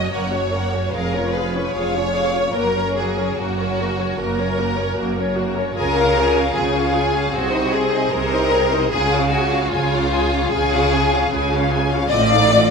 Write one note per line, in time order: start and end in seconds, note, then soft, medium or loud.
0.00 0.13 C#4 soft
0.00 0.13 F#4 soft
0.00 0.14 C#5 soft
0.11 0.85 F#1 soft
0.11 0.85 F#2 soft
0.11 0.31 A#3 soft
0.11 0.31 A#4 soft
0.11 0.94 C#5 medium
0.11 0.33 F#5 soft
0.31 0.53 C#4 soft
0.31 0.53 F#4 soft
0.31 0.55 C#5 soft
0.53 0.74 A#3 soft
0.53 0.74 A#4 soft
0.53 0.74 F#5 soft
0.73 0.94 C#4 soft
0.73 0.94 F#4 soft
0.73 0.94 C#5 soft
0.93 1.65 F1 medium
0.93 1.65 F2 soft
0.93 1.14 F4 soft
0.93 1.14 G#4 soft
0.93 1.34 A#4 medium
0.93 1.13 F5 soft
1.14 1.34 C#4 soft
1.14 1.34 F4 soft
1.14 1.34 C#5 soft
1.32 1.53 F4 soft
1.32 1.55 G#4 soft
1.32 1.73 B4 medium
1.32 1.54 F5 soft
1.54 1.75 C#4 soft
1.54 1.74 F4 soft
1.54 1.74 C#5 soft
1.71 2.45 F1 soft
1.71 2.46 F2 soft
1.71 2.54 C#5 medium
1.75 1.94 F4 soft
1.75 1.94 G#4 soft
1.75 1.93 F5 soft
1.94 2.14 C#4 soft
1.94 2.13 F4 soft
1.94 2.15 C#5 soft
2.14 2.34 F4 soft
2.14 2.34 G#4 soft
2.14 2.35 F5 soft
2.35 2.55 C#4 soft
2.35 2.55 F4 soft
2.35 2.55 C#5 soft
2.53 3.28 F#1 medium
2.53 3.28 F#2 soft
2.53 2.74 A#3 soft
2.53 2.74 F#4 soft
2.53 2.95 A#4 medium
2.53 2.74 A#4 soft
2.76 2.97 C#4 soft
2.76 2.97 A#4 soft
2.76 2.97 C#5 soft
2.97 3.18 A#3 soft
2.97 3.18 F#4 soft
2.97 3.37 G#4 medium
2.97 3.18 A#4 soft
3.18 3.38 C#4 soft
3.18 3.38 A#4 soft
3.18 3.39 C#5 soft
3.37 4.10 F#1 medium
3.37 4.09 F#2 medium
3.37 3.58 A#3 soft
3.37 4.19 F#4 medium
3.37 3.58 F#4 soft
3.37 3.58 A#4 soft
3.60 3.80 C#4 soft
3.60 3.80 A#4 soft
3.60 3.80 C#5 soft
3.80 4.00 A#3 soft
3.80 4.00 F#4 soft
3.80 4.00 A#4 soft
3.99 4.19 C#4 soft
3.99 4.19 A#4 soft
3.99 4.20 C#5 soft
4.19 4.90 F#1 medium
4.19 4.90 F#2 medium
4.19 4.38 A#3 soft
4.19 4.38 F#4 soft
4.19 5.38 A#4 medium
4.19 4.38 A#4 soft
4.38 4.59 C#4 soft
4.38 4.58 A#4 soft
4.38 4.60 C#5 soft
4.58 4.78 A#3 soft
4.58 4.79 F#4 soft
4.58 4.80 A#4 medium
4.78 4.99 C#4 soft
4.78 4.99 A#4 soft
4.78 4.99 C#5 soft
4.96 5.69 F#1 medium
4.96 5.68 F#2 medium
4.96 5.16 A#3 soft
4.96 5.16 F#4 soft
4.96 5.18 A#4 soft
5.17 5.38 C#4 soft
5.17 5.38 A#4 soft
5.17 5.39 C#5 soft
5.35 5.57 A#3 soft
5.35 5.57 F#4 medium
5.40 5.59 A#4 soft
5.56 5.77 C#4 medium
5.56 5.77 A#4 soft
5.60 5.79 C#5 soft
5.74 6.47 C#2 medium
5.74 6.47 C#3 medium
5.74 5.94 F4 soft
5.74 5.95 G#4 medium
5.74 6.52 A#4 medium
5.79 5.97 G#5 soft
5.95 6.16 C#4 soft
5.95 6.14 F4 soft
5.95 6.17 F5 soft
6.15 6.34 F4 soft
6.15 6.36 G#4 soft
6.15 6.38 G#5 soft
6.35 6.56 C#4 soft
6.35 6.51 F4 soft
6.40 6.58 F5 medium
6.52 7.25 C#2 medium
6.52 7.25 C#3 medium
6.52 6.72 F4 soft
6.52 6.73 G#4 medium
6.52 7.34 G#4 medium
6.60 6.77 G#5 soft
6.73 6.94 C#4 soft
6.73 6.93 F4 soft
6.79 6.97 F5 soft
6.94 7.13 F4 soft
6.94 7.14 G#4 soft
6.98 7.16 G#5 soft
7.14 7.34 C#4 soft
7.14 7.34 F4 soft
7.18 7.36 F5 soft
7.31 8.03 C2 medium
7.31 8.03 C3 medium
7.31 7.51 C4 medium
7.31 7.73 F#4 medium
7.31 7.51 G#4 medium
7.38 7.55 C5 soft
7.51 7.72 D#4 soft
7.51 7.72 C5 soft
7.56 7.74 D#5 soft
7.71 7.92 C4 soft
7.71 7.92 G#4 soft
7.71 8.13 G#4 medium
7.76 7.94 C5 soft
7.91 8.12 D#4 soft
7.91 8.12 C5 soft
7.91 8.13 D#5 soft
8.11 8.83 C2 medium
8.11 8.83 C3 medium
8.11 8.32 C4 soft
8.11 8.31 G#4 soft
8.11 8.91 A#4 medium
8.11 8.32 C5 medium
8.30 8.52 D#4 soft
8.30 8.51 C5 soft
8.35 8.54 D#5 soft
8.51 8.72 C4 medium
8.51 8.72 G#4 medium
8.51 8.73 C5 soft
8.71 8.92 D#4 soft
8.71 8.92 C5 medium
8.71 8.92 D#5 medium
8.91 9.63 C#2 medium
8.91 9.63 C#3 medium
8.91 9.10 F4 medium
8.91 9.31 G#4 medium
8.91 9.11 G#4 medium
8.91 9.12 G#5 medium
9.11 9.32 C#4 soft
9.11 9.30 F4 soft
9.11 9.32 F5 soft
9.30 9.51 F4 soft
9.30 9.71 F#4 medium
9.30 9.52 G#4 medium
9.30 9.53 G#5 medium
9.52 9.73 C#4 medium
9.52 9.73 F4 medium
9.52 9.72 F5 medium
9.70 10.43 C#2 medium
9.70 10.43 C#3 medium
9.70 10.51 F4 medium
9.70 9.92 F4 soft
9.70 9.91 G#5 soft
9.75 9.93 G#4 soft
9.94 10.13 C#4 soft
9.94 10.13 F4 soft
9.94 10.13 F5 soft
10.13 10.31 F4 soft
10.13 10.34 G#4 soft
10.13 10.33 G#5 soft
10.32 10.52 C#4 soft
10.32 10.51 F4 soft
10.32 10.53 F5 soft
10.49 11.22 C#2 medium
10.49 11.22 C#3 medium
10.49 10.71 F4 medium
10.49 11.69 G#4 medium
10.49 10.70 G#4 medium
10.49 10.70 G#5 medium
10.72 10.92 C#4 medium
10.72 10.91 F4 medium
10.72 10.92 F5 medium
10.92 11.11 F4 medium
10.92 11.12 G#4 soft
10.92 11.12 G#5 medium
11.12 11.32 C#4 medium
11.12 11.30 F4 medium
11.12 11.32 F5 medium
11.31 12.01 C#2 medium
11.31 12.01 C#3 medium
11.31 11.49 F4 soft
11.31 11.50 G#4 medium
11.31 11.50 G#5 soft
11.52 11.71 C#4 soft
11.52 11.71 F4 soft
11.52 11.71 F5 soft
11.71 11.90 F4 medium
11.71 11.91 G#4 medium
11.71 11.91 G#5 soft
11.90 12.11 C#4 medium
11.90 12.11 F4 medium
11.90 12.10 F5 medium
12.09 12.70 A1 medium
12.09 12.70 A2 medium
12.09 12.29 C4 medium
12.09 12.30 F4 medium
12.09 12.70 D5 loud
12.09 12.28 D#5 medium
12.29 12.50 D#4 medium
12.29 12.50 A4 soft
12.29 12.49 F5 soft
12.49 12.69 C4 medium
12.49 12.69 F4 medium
12.49 12.69 D#5 medium